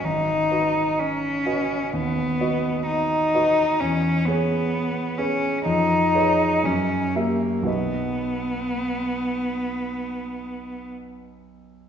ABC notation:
X:1
M:4/4
L:1/8
Q:1/4=63
K:B
V:1 name="Grand piano"
G,,, [FBd]2 [FBd] D,, [FBd]2 [FBd] | E,, [GBc]2 [GBc] ^E,, [GBc] F,, [=GA=e] | [B,,,FBd]8 |]
V:2 name="Cello"
D2 C2 B,2 D2 | C B,2 C D2 C A, | B,6 z2 |]